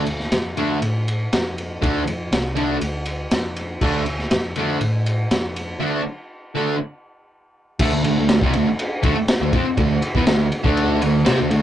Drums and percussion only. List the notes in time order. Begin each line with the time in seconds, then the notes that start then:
0.06 ride
0.20 snare
0.32 snare, ride
0.57 ride
0.82 ride
1.08 ride
1.33 snare, ride
1.58 ride
1.82 kick, ride
2.07 ride
2.32 snare, ride
2.56 ride
2.81 ride
3.06 ride
3.31 snare, ride
3.56 ride
3.81 kick, crash
4.06 ride
4.19 snare
4.31 snare, ride
4.56 ride
4.81 ride
5.06 ride
5.31 snare, ride
5.56 ride
7.79 kick, crash
8.04 ride
8.29 snare, ride
8.41 kick
8.53 ride
8.79 ride
9.03 kick, ride
9.28 snare, ride
9.53 kick, ride
9.77 kick, ride
10.02 ride
10.15 kick
10.27 snare, ride
10.52 ride
10.64 kick
10.77 ride
11.02 ride
11.26 snare, ride
11.51 ride